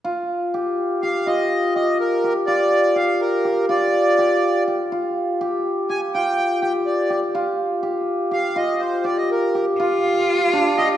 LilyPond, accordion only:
\new Staff \with { instrumentName = "Accordion" } { \time 5/8 \key f \mixolydian \tempo 4 = 123 r2 f''8 | ees''4 ees''8 bes'8. r16 | d''4 f''8 bes'4 | d''2 r8 |
r2 aes''8 | g''4 g''8 d''8. r16 | r2 f''8 | ees''8 c''8 d''16 ees''16 bes'8. r16 |
r2 ees''8 | }